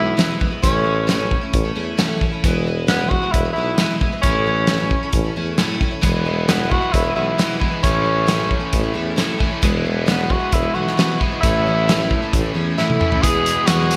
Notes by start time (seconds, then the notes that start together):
Already playing: B1 E3 G#3 B3 E4
0.17 E2 B2 E3 G#3 B3 E4, snare, closed hi-hat
0.39 E3 G#3 B3 E4, kick
0.50 E3 G#3 B3 E4
0.62 A1 A2 E3 A3 C#4 E4, kick, closed hi-hat
0.84 E3 A3 C#4 E4
1.07 A2 E3 A3 C#4 E4, snare, closed hi-hat
1.18 A3 C#4 E4
1.31 kick
1.41 A3 C#4 E4
1.53 A1, kick, closed hi-hat
1.63 A3 C#4 E4
1.75 E2 E3 A3 C#4 E4
1.97 A2 E3 A3 C#4 E4, snare, closed hi-hat
2.21 E3 A3 C#4 E4, kick
2.32 A3 C#4 E4
2.44 E1 E2 B2 E3 G#3 B3 E4, kick, closed hi-hat
2.66 E3 G#3 B3 E4
2.87 E2 B2 E3 G#3 B3 E4, snare, closed hi-hat
2.99 E3 G#3 B3 E4
3.09 F#4, kick
3.22 E3 G#3 B3 E4
3.31 E1 E4, kick, closed hi-hat
3.45 E3 G#3 B3 E4
3.53 B1 E3 G#3 E4
3.57 B3 E4
3.78 E2 B2 E3 G#3 B3 E4, snare, closed hi-hat
4.01 E3 G#3 B3 E4, kick
4.12 E3 G#3 B3 E4
4.22 A1 A2 E3 A3 C#4, kick, closed hi-hat
4.26 E4
4.46 E3 A3 C#4 E4
4.67 A2 E3 A3 C#4 E4, snare, closed hi-hat
4.80 A3 C#4 E4
4.91 kick
5.03 A3 C#4 E4
5.13 A1, kick, closed hi-hat
5.24 A3 C#4 E4
5.36 E2 E3 A3 C#4 E4
5.58 A2 E3 A3 C#4 E4, snare, closed hi-hat
5.81 E3 A3 C#4 E4, kick
5.91 A3 C#4 E4
6.01 E1 E2 B2 E3 G#3 B3 E4, kick, closed hi-hat
6.25 E3 G#3 B3 E4
6.48 E2 B2 E3 G#3 B3 E4, snare, closed hi-hat
6.58 E3 G#3 B3 E4
6.70 F#4, kick
6.81 E3 G#3 B3 E4
6.92 E1 E4, kick, closed hi-hat
7.04 E3 G#3 B3 E4
7.15 B1 E3 G#3 B3 E4
7.38 E2 B2 E3 G#3 B3 E4, snare, closed hi-hat
7.59 E3 G#3 B3 E4, kick
7.71 E3 G#3 B3 E4
7.83 A1 A2 E3 A3 C#4 E4, kick, closed hi-hat
8.04 E3 A3 C#4 E4
8.26 A2 E3 A3 C#4 E4, snare, closed hi-hat
8.38 A3 C#4 E4
8.51 kick
8.60 A3 C#4 E4
8.73 A1, kick, closed hi-hat
8.83 A3 C#4 E4
8.93 E2 E3 A3 C#4 E4
9.16 A2 E3 A3 C#4 E4, snare, closed hi-hat
9.39 A2 E3 A3 C#4 E4, kick
9.50 A3 C#4 E4
9.62 E1 E2 B2 E3 G#3 B3 E4, kick, closed hi-hat
9.85 E3 G#3 B3 E4
10.06 E2 B2 E3 G#3 B3 E4, snare, closed hi-hat
10.10 B3
10.16 E3 G#3 B3 E4
10.30 F#4, kick
10.39 E3 G#3 B3 E4
10.52 E1 E4, kick, closed hi-hat
10.62 E3 G#3 B3 E4
10.73 B1 E3 G#3 B3 E4 F#4
10.87 snare
10.97 E2 B2 E3 G#3 B3 E4, snare, closed hi-hat
11.20 E2 B2 E3 G#3 B3 E4, kick
11.31 E3 G#3 B3 E4
11.41 A1 A2 E3 A3 C#4 E4, kick, closed hi-hat
11.66 E3 A3 C#4 E4
11.88 A2 E3 A3 C#4 E4, snare, closed hi-hat
11.98 A3 C#4 E4
12.11 kick
12.22 A3 C#4 E4
12.33 A1, kick, closed hi-hat
12.44 A3 C#4 E4
12.54 E2 E3 A3 C#4 E4
12.78 A2 E3 A3 C#4 E4, snare
12.90 high tom
12.99 A2 E3 A3 C#4 E4, mid tom
13.11 A3 C#4 E4, floor tom
13.22 E2 B2 E3 G#3 B3 E4 G#4, kick, closed hi-hat
13.45 E3 G#3 B3 G#4, closed hi-hat
13.55 E3 G#3 B3 E4
13.66 E2 B2 E3 G#3 B3 E4 F#4 G#4, snare, closed hi-hat
13.91 E3 G#3 B3 G#4, snare, closed hi-hat